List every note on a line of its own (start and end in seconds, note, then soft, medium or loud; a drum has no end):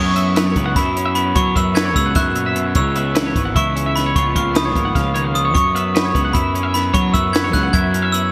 0.00 0.52 F#2 medium
0.00 1.33 F#2 medium
0.00 0.35 F#3 medium
0.00 0.15 B3 medium
0.00 0.97 C#4 medium
0.00 0.77 E4 medium
0.00 0.15 C#5 medium
0.00 0.79 C#6 loud
0.16 0.57 B3 medium
0.16 0.36 E5 medium
0.16 closed hi-hat medium
0.36 1.33 F#3 medium
0.36 0.46 B4 medium
0.36 snare loud
0.36 closed hi-hat loud
0.46 0.66 C#5 medium
0.56 0.75 C#2 medium
0.56 1.15 B3 medium
0.56 kick medium
0.56 closed hi-hat medium
0.66 0.76 F#5 medium
0.76 1.32 F#2 medium
0.76 2.76 E4 medium
0.76 0.96 E5 medium
0.76 1.14 B5 medium
0.76 kick medium
0.76 snare soft
0.76 closed hi-hat medium
0.96 1.60 C#4 medium
0.96 1.05 C#5 medium
0.96 closed hi-hat medium
1.06 1.25 E5 medium
1.15 1.57 B3 medium
1.15 1.36 B5 medium
1.15 closed hi-hat medium
1.25 1.34 C#5 medium
1.35 2.15 F#2 medium
1.35 1.55 F#3 medium
1.35 1.56 C#5 medium
1.35 1.55 C#6 medium
1.35 kick loud
1.35 closed hi-hat medium
1.56 1.96 F#2 medium
1.56 1.96 B3 medium
1.56 1.76 E5 medium
1.56 1.77 E6 medium
1.56 kick medium
1.56 closed hi-hat medium
1.75 2.73 F#3 medium
1.75 1.85 B4 medium
1.75 1.96 G#6 loud
1.75 snare loud
1.75 closed hi-hat medium
1.85 2.05 C#5 medium
1.96 2.14 C#2 medium
1.96 2.79 B3 medium
1.96 2.16 E6 loud
1.96 kick medium
1.96 closed hi-hat medium
2.06 2.15 F#5 medium
2.15 2.77 F#2 medium
2.15 2.35 G#2 medium
2.15 2.36 E5 medium
2.15 2.58 F#6 loud
2.15 kick loud
2.15 snare soft
2.15 closed hi-hat medium
2.35 2.56 A#2 medium
2.35 2.46 C#5 medium
2.35 closed hi-hat medium
2.46 2.67 E5 medium
2.55 2.75 B2 medium
2.55 closed hi-hat medium
2.67 2.75 C#5 medium
2.75 3.32 C#2 medium
2.75 3.16 C#3 medium
2.75 2.96 C#5 medium
2.75 3.52 E6 loud
2.75 kick loud
2.75 closed hi-hat medium
2.96 3.36 B3 medium
2.96 3.16 E5 medium
2.96 closed hi-hat medium
3.15 4.15 E3 medium
3.15 3.25 B4 medium
3.15 snare loud
3.15 closed hi-hat medium
3.26 3.45 C#5 medium
3.35 3.54 G#1 medium
3.35 3.96 B3 medium
3.35 kick medium
3.35 closed hi-hat medium
3.45 3.55 F#5 medium
3.56 4.12 C#2 medium
3.56 4.15 E4 medium
3.56 3.76 E5 medium
3.56 3.97 C#6 medium
3.56 kick loud
3.56 closed hi-hat medium
3.76 4.18 C#4 medium
3.76 3.85 C#5 medium
3.76 closed hi-hat medium
3.86 4.06 E5 medium
3.96 4.17 B3 medium
3.96 4.16 B5 medium
3.96 snare soft
3.96 closed hi-hat medium
4.06 4.15 C#5 medium
4.16 4.34 C#2 medium
4.16 4.56 C#3 medium
4.16 4.54 F3 medium
4.16 4.36 A#3 medium
4.16 5.75 B3 medium
4.16 5.54 F4 medium
4.16 4.36 C#5 medium
4.16 4.35 C#6 medium
4.16 kick loud
4.16 closed hi-hat medium
4.36 4.76 C#2 medium
4.36 4.75 A#3 medium
4.36 4.55 F5 medium
4.36 4.45 C#6 medium
4.36 kick medium
4.36 closed hi-hat medium
4.55 5.33 F3 medium
4.55 4.65 B4 medium
4.55 5.11 D#6 medium
4.55 snare loud
4.55 closed hi-hat medium
4.65 4.85 C#5 medium
4.76 4.94 G#1 medium
4.76 5.53 A#3 medium
4.76 kick medium
4.76 closed hi-hat medium
4.85 4.95 F#5 medium
4.95 5.55 C#2 medium
4.95 5.14 C#3 medium
4.95 5.14 F5 medium
4.95 kick loud
4.95 snare soft
4.95 closed hi-hat medium
5.14 5.35 D#3 medium
5.14 5.24 C#5 medium
5.14 closed hi-hat medium
5.24 5.44 F5 medium
5.34 5.54 F3 medium
5.34 5.55 D#6 loud
5.34 closed hi-hat medium
5.45 5.54 C#5 medium
5.54 6.91 F#2 medium
5.54 6.11 F#2 loud
5.54 5.75 C#5 medium
5.54 6.37 C#6 medium
5.54 kick loud
5.54 closed hi-hat medium
5.75 6.14 B3 medium
5.75 5.95 E5 medium
5.75 closed hi-hat medium
5.94 6.92 F#3 medium
5.94 6.05 B4 medium
5.94 snare loud
5.94 closed hi-hat medium
6.05 6.24 C#5 medium
6.15 6.33 C#2 medium
6.15 6.75 B3 medium
6.15 kick medium
6.15 closed hi-hat medium
6.25 6.34 F#5 medium
6.33 6.91 F#2 medium
6.33 7.75 E4 medium
6.33 6.54 E5 medium
6.33 6.73 B5 medium
6.33 kick loud
6.33 closed hi-hat medium
6.54 7.17 C#4 medium
6.54 6.63 C#5 medium
6.54 closed hi-hat medium
6.63 6.84 E5 medium
6.74 7.14 B3 medium
6.74 6.93 B5 medium
6.74 snare soft
6.74 closed hi-hat medium
6.84 6.92 C#5 medium
6.93 8.31 F#2 medium
6.93 7.13 F#3 medium
6.93 7.13 C#5 medium
6.93 7.15 C#6 medium
6.93 kick loud
6.93 closed hi-hat medium
7.13 7.54 F#2 loud
7.13 7.54 B3 medium
7.13 7.34 E5 medium
7.13 7.34 E6 medium
7.13 kick medium
7.13 closed hi-hat medium
7.33 8.30 F#3 medium
7.33 7.44 B4 medium
7.33 7.54 G#6 medium
7.33 snare loud
7.33 closed hi-hat medium
7.44 7.63 C#5 medium
7.53 7.72 C#2 loud
7.53 8.14 B3 medium
7.53 7.74 F#6 loud
7.53 kick medium
7.53 snare soft
7.53 closed hi-hat medium
7.63 7.73 F#5 medium
7.73 8.32 F#2 loud
7.73 8.32 E4 medium
7.73 7.93 E5 medium
7.73 8.14 G#6 medium
7.73 kick loud
7.73 closed hi-hat medium
7.93 8.32 C#4 medium
7.93 8.02 C#5 medium
7.93 closed hi-hat medium
8.02 8.23 E5 medium
8.12 8.32 B3 medium
8.12 8.32 E6 loud
8.12 closed hi-hat medium
8.23 8.31 C#5 medium